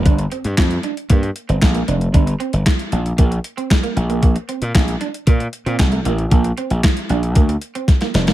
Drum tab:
HH |xxxxxxxxxxxxxxxx|xxxxxxxxxxxxxxxx|xxxxxxxxxxxxxxxx|xxxxxxxxxxxxxxxx|
CP |----x-------x---|----x-------x---|----x-------x---|----x-----------|
SD |----o-------o---|----o-------o---|----o-------o---|----o-------oooo|
BD |o---o---o---o---|o---o---o---o---|o---o---o---o---|o---o---o---o---|